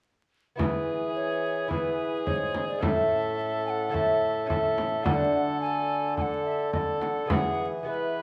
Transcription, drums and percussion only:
0.59 frame drum medium
1.71 frame drum soft
2.27 frame drum soft
2.55 frame drum soft
2.83 frame drum medium
3.94 frame drum soft
4.50 frame drum medium
4.78 frame drum soft
5.06 frame drum medium
6.17 frame drum soft
6.73 frame drum soft
7.02 frame drum soft
7.30 frame drum medium

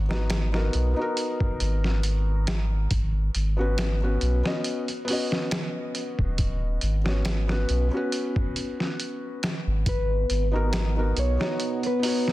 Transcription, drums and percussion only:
0.11 snare medium
0.30 snare loud
0.30 closed hi-hat medium
0.54 snare soft
0.73 closed hi-hat medium
1.17 closed hi-hat medium
1.40 kick medium
1.60 closed hi-hat medium
1.84 snare soft
2.03 closed hi-hat medium
2.47 snare loud
2.47 closed hi-hat medium
2.91 kick loud
2.91 closed hi-hat medium
3.35 closed hi-hat medium
3.78 snare loud
3.78 closed hi-hat medium
4.21 closed hi-hat medium
4.46 snare soft
4.64 closed hi-hat medium
4.88 closed hi-hat soft
5.08 open hi-hat medium
5.32 snare soft
5.51 snare loud
5.51 closed hi-hat medium
5.95 closed hi-hat medium
6.19 kick medium
6.38 kick loud
6.38 closed hi-hat medium
6.81 closed hi-hat medium
7.06 snare medium
7.25 snare loud
7.25 closed hi-hat medium
7.49 snare soft
7.69 closed hi-hat medium
8.12 closed hi-hat medium
8.36 kick medium
8.56 closed hi-hat medium
8.80 snare soft
9.00 closed hi-hat medium
9.43 snare loud
9.43 closed hi-hat medium
9.86 kick loud
9.86 closed hi-hat medium
10.30 closed hi-hat medium
10.73 snare loud
10.73 closed hi-hat medium
11.17 closed hi-hat medium
11.41 snare soft
11.60 closed hi-hat medium
11.83 closed hi-hat soft
12.03 open hi-hat medium
12.28 snare soft

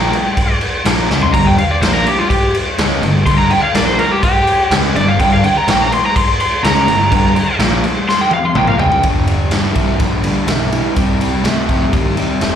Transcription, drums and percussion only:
0.13 crash medium
0.37 kick loud
0.37 crash medium
0.61 crash medium
0.85 snare loud
0.85 crash medium
1.11 snare medium
1.21 floor tom medium
1.34 kick loud
1.34 crash medium
1.58 crash medium
1.82 snare loud
1.82 crash medium
2.06 crash medium
2.30 kick loud
2.30 crash medium
2.54 crash medium
2.78 snare loud
2.78 crash medium
3.03 crash medium
3.26 kick loud
3.26 crash medium
3.51 crash medium
3.75 snare loud
3.75 crash medium
3.99 crash medium
4.23 kick loud
4.23 crash medium
4.47 crash medium
4.71 snare loud
4.71 crash medium
4.96 crash medium
5.20 kick loud
5.20 crash medium
5.44 crash medium
5.68 snare loud
5.68 crash loud
5.92 crash medium
6.16 kick loud
6.16 crash medium
6.40 crash medium
6.64 snare loud
6.64 crash medium
6.77 snare soft
6.88 crash medium
7.12 kick loud
7.12 crash medium
7.36 crash medium
7.59 snare loud
7.59 crash medium
7.84 crash medium
8.09 snare medium
8.31 high tom medium
8.55 mid tom medium
8.67 mid tom medium
8.79 floor tom loud
8.92 floor tom loud
9.03 kick loud
9.03 ride medium
9.27 ride medium
9.51 snare loud
9.51 ride medium
9.75 kick medium
9.75 ride medium
10.00 kick loud
10.00 ride medium
10.24 ride medium
10.48 snare loud
10.48 ride loud
10.72 ride medium
10.96 kick loud
10.96 ride medium
11.21 ride medium
11.45 snare loud
11.45 ride medium
11.69 kick medium
11.69 ride medium
11.93 kick loud
11.93 ride medium
12.17 ride medium
12.41 snare loud
12.41 ride medium

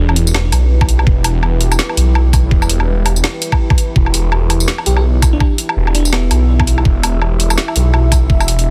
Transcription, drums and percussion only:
0.09 low woodblock medium
0.16 closed hi-hat medium
0.27 tambourine medium
0.34 snare loud
0.34 low woodblock medium
0.52 closed hi-hat medium
0.52 low woodblock medium
0.81 kick loud
0.81 low woodblock medium
0.89 closed hi-hat medium
0.99 low woodblock medium
1.07 kick loud
1.24 closed hi-hat medium
1.24 low woodblock medium
1.43 low woodblock medium
1.61 closed hi-hat medium
1.72 tambourine medium
1.72 low woodblock medium
1.79 snare loud
1.89 low woodblock soft
1.97 closed hi-hat medium
2.15 low woodblock medium
2.33 kick loud
2.33 closed hi-hat medium
2.33 tambourine medium
2.33 low woodblock medium
2.51 kick loud
2.62 tambourine soft
2.62 low woodblock medium
2.69 closed hi-hat medium
2.80 low woodblock soft
3.06 closed hi-hat medium
3.06 low woodblock medium
3.16 tambourine medium
3.24 snare loud
3.24 low woodblock medium
3.42 closed hi-hat medium
3.52 kick medium
3.52 low woodblock medium
3.70 kick loud
3.70 low woodblock soft
3.78 closed hi-hat medium
3.96 kick loud
4.06 low woodblock medium
4.14 closed hi-hat medium
4.32 low woodblock medium
4.50 closed hi-hat medium
4.50 low woodblock soft
4.60 tambourine medium
4.68 snare loud
4.78 low woodblock medium
4.86 closed hi-hat medium
4.97 low woodblock medium
5.22 kick loud
5.22 closed hi-hat medium
5.22 tambourine medium
5.22 low woodblock medium
5.40 kick loud
5.40 low woodblock medium
5.58 closed hi-hat medium
5.69 low woodblock medium
5.87 low woodblock medium
5.95 closed hi-hat medium
6.05 tambourine medium
6.13 snare loud
6.13 low woodblock medium
6.31 closed hi-hat medium
6.31 low woodblock medium
6.60 kick loud
6.60 low woodblock medium
6.67 closed hi-hat medium
6.78 low woodblock medium
6.85 kick loud
7.03 closed hi-hat medium
7.03 low woodblock medium
7.22 low woodblock medium
7.40 closed hi-hat medium
7.50 tambourine medium
7.50 low woodblock medium
7.58 snare loud
7.68 low woodblock medium
7.76 closed hi-hat medium
7.94 low woodblock medium
8.12 kick loud
8.12 closed hi-hat medium
8.12 tambourine medium
8.12 low woodblock medium
8.30 kick loud
8.40 tambourine soft
8.40 low woodblock medium
8.48 closed hi-hat medium
8.59 closed hi-hat soft

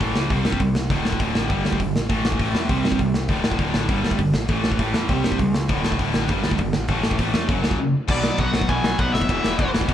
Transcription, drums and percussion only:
0.01 kick medium
0.01 open hi-hat medium
0.15 snare loud
0.30 kick loud
0.30 open hi-hat medium
0.45 snare loud
0.53 kick medium
0.60 kick loud
0.60 open hi-hat soft
0.75 snare loud
0.90 kick loud
0.90 open hi-hat medium
1.05 snare loud
1.12 kick medium
1.20 kick loud
1.20 open hi-hat medium
1.35 snare loud
1.50 kick loud
1.50 open hi-hat soft
1.65 snare loud
1.73 kick medium
1.80 kick medium
1.80 open hi-hat medium
1.96 snare medium
2.09 kick loud
2.09 open hi-hat medium
2.25 snare loud
2.32 kick medium
2.39 kick loud
2.39 open hi-hat medium
2.55 snare loud
2.69 kick loud
2.69 open hi-hat medium
2.85 snare loud
2.92 kick medium
2.99 kick loud
2.99 open hi-hat medium
3.14 snare loud
3.28 kick loud
3.28 open hi-hat medium
3.44 snare loud
3.52 kick medium
3.59 kick loud
3.59 open hi-hat medium
3.74 snare loud
3.89 kick loud
3.89 open hi-hat medium
4.05 snare loud
4.11 kick medium
4.19 kick medium
4.19 open hi-hat medium
4.34 snare loud
4.48 kick loud
4.48 open hi-hat medium
4.64 snare loud
4.72 kick medium
4.79 kick loud
4.79 open hi-hat medium
4.94 snare loud
5.08 kick loud
5.08 open hi-hat medium
5.24 snare loud
5.32 kick medium
5.39 kick loud
5.39 open hi-hat medium
5.54 snare loud
5.69 kick loud
5.69 open hi-hat medium
5.84 snare loud
5.92 kick medium
5.99 kick medium
5.99 open hi-hat medium
6.14 snare loud
6.28 kick loud
6.28 open hi-hat soft
6.44 snare loud
6.51 kick medium
6.58 kick loud
6.58 open hi-hat medium
6.73 snare loud
6.88 kick loud
6.88 open hi-hat medium
7.03 snare loud
7.11 kick medium
7.19 kick loud
7.19 open hi-hat medium
7.34 snare loud
7.49 kick loud
7.49 open hi-hat soft
7.64 snare loud
7.71 kick medium
8.08 kick loud
8.08 crash loud
8.24 snare loud
8.38 kick loud
8.38 ride medium
8.54 snare loud
8.61 kick medium
8.69 kick loud
8.69 ride medium
8.84 snare loud
8.99 kick loud
8.99 ride medium
9.15 snare loud
9.22 kick medium
9.29 kick loud
9.29 ride medium
9.44 snare loud
9.59 kick loud
9.59 ride medium
9.75 snare loud
9.81 kick medium
9.89 kick loud
9.89 ride medium

